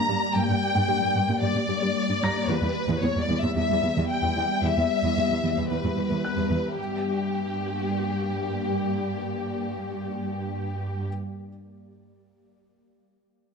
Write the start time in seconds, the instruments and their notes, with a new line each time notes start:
Already playing: ambient pad G3 A#3 G4 D5, grand piano F5 F6, violin section A#5
0.09 cello section G2, synth pluck G3
0.36 cello section G2, synth pluck G3, violin section G5
0.49 cello section G2, synth pluck A#3
0.75 cello section G2, synth pluck G3
0.88 cello section G2, synth pluck G4
1.02 cello section G2, synth pluck A#3
1.15 cello section G2, synth pluck G3
1.29 cello section G2, synth pluck A#3
1.42 cello section G2, synth pluck G3, violin section D5
1.56 cello section G2, synth pluck A#3
1.69 cello section G2, synth pluck G4
1.82 cello section G2, synth pluck G3
2.09 cello section G2, synth pluck D4
2.22 cello section G2, synth pluck G3, grand piano A#5 A#6
2.49 cello section E2, synth pluck E3, ambient pad G3 B3 G4 E5, violin section B4
2.62 cello section E2, synth pluck G3
2.89 cello section E2, synth pluck E3
3.03 cello section E2, synth pluck E4, violin section C#5
3.16 cello section E2, synth pluck G3
3.21 violin section D5
3.29 cello section E2, synth pluck E3
3.40 cello section E2, synth pluck G3, violin section E5
3.56 cello section E2, synth pluck E3, violin section E5
3.70 cello section E2, synth pluck G3
3.83 cello section E2, synth pluck E4
3.96 cello section E2, synth pluck E3
4.11 violin section G5
4.23 cello section E2, synth pluck B3
4.37 cello section E2, synth pluck E3
4.63 cello section E2, synth pluck E3, violin section E5
4.77 cello section E2, synth pluck G3
5.04 cello section E2, synth pluck E3
5.17 cello section E2, synth pluck E4
5.30 cello section E2, synth pluck G3
5.43 cello section E2, synth pluck E3
5.57 cello section E2, synth pluck G3
5.70 cello section E2, synth pluck E3, violin section B4
5.83 cello section E2, synth pluck G3
5.97 cello section E2, synth pluck E4
6.10 cello section E2, synth pluck E3
6.25 grand piano F#6
6.38 cello section E2, synth pluck B3
6.50 cello section E2, synth pluck E3
6.77 cello section G2, ambient pad G3 A#3 G4 D5, violin section G4